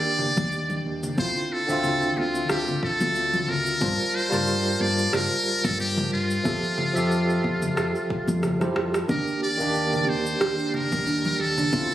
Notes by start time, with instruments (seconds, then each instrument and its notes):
Already playing: tine electric piano D#3 A#3 D4 G4, muted trumpet D5
0.04 shaker
0.19 low conga
0.37 fingered electric bass D#2, kick, high conga, low conga, shaker
0.52 shaker
0.70 low conga, shaker
0.85 fingered electric bass D#2
1.03 low conga, shaker
1.16 fingered electric bass D2, tine electric piano D3 C4 E4 F4, muted trumpet C5, kick, high conga, shaker
1.36 shaker
1.52 muted trumpet A4
1.66 fingered electric bass D2, tine electric piano D3 C4 E5, shaker
1.72 tine electric piano F4
1.84 low conga, shaker
2.02 shaker
2.17 fingered electric bass D2, muted trumpet F4, high conga
2.35 shaker
2.49 fingered electric bass D2, muted trumpet G4, cross-stick, shaker
2.68 low conga, shaker
2.83 muted trumpet A4, kick
3.00 fingered electric bass D2, high conga, low conga, shaker
3.15 shaker
3.33 low conga, shaker
3.48 fingered electric bass D2, muted trumpet A#4, low conga
3.66 shaker
3.80 fingered electric bass G2, tine electric piano G3 F4 A#4 C5 A5, kick, high conga, shaker
3.99 shaker
4.15 muted trumpet C5
4.29 fingered electric bass G2, tine electric piano G3 F4 A5, low conga, shaker
4.33 tine electric piano A#4 C5
4.47 shaker
4.65 shaker
4.80 fingered electric bass G2, muted trumpet D5, high conga
4.99 shaker
5.13 fingered electric bass G2, muted trumpet A#4, cross-stick, low conga, shaker
5.32 shaker
5.64 fingered electric bass G2, muted trumpet A4, kick, high conga, low conga, shaker
5.80 muted trumpet G4, shaker
5.98 low conga, shaker
6.12 fingered electric bass G2, muted trumpet F4
6.30 shaker
6.43 fingered electric bass F2, tine electric piano F3 G4 A4 E5, kick, high conga, shaker
6.63 shaker
6.78 low conga
6.94 fingered electric bass F2, tine electric piano F3 G4 E5, shaker
6.99 tine electric piano A4
7.11 shaker
7.30 shaker
7.44 fingered electric bass F2, kick, high conga
7.62 low conga, shaker
7.77 fingered electric bass F2, cross-stick, shaker
7.95 shaker
8.10 kick
8.28 fingered electric bass F2, high conga, low conga, shaker
8.43 cross-stick, low conga, shaker
8.60 tine electric piano F3 E4 G4 C5, cross-stick, low conga, shaker
8.76 fingered electric bass F2, cross-stick
8.94 cross-stick, shaker
9.08 fingered electric bass D#2, tine electric piano D#3 A#3 D4 G4, synth arpeggio sound D4, muted trumpet A#4, kick, high conga, low conga, shaker
9.27 shaker
9.42 synth arpeggio sound G4, muted trumpet D5
9.58 fingered electric bass D#2, tine electric piano D#3 A#3 D4, synth arpeggio sound D4, shaker
9.63 tine electric piano G4
9.75 shaker
9.93 synth arpeggio sound A#4, low conga, shaker
10.07 fingered electric bass D#2, synth arpeggio sound D4, muted trumpet C5, high conga
10.26 shaker
10.41 fingered electric bass D#2, synth arpeggio sound G4, cross-stick, shaker
10.59 synth arpeggio sound D4, shaker
10.74 muted trumpet A#4, low conga
10.92 fingered electric bass D#2, synth arpeggio sound A#4, kick, high conga, low conga, shaker
11.07 synth arpeggio sound D4, shaker
11.25 low conga, shaker
11.39 fingered electric bass D#2, synth arpeggio sound G4, muted trumpet A4
11.58 synth arpeggio sound D4, low conga, shaker
11.72 fingered electric bass D2, tine electric piano D3 C4 E4 F4, kick, high conga, shaker
11.91 synth arpeggio sound A4, shaker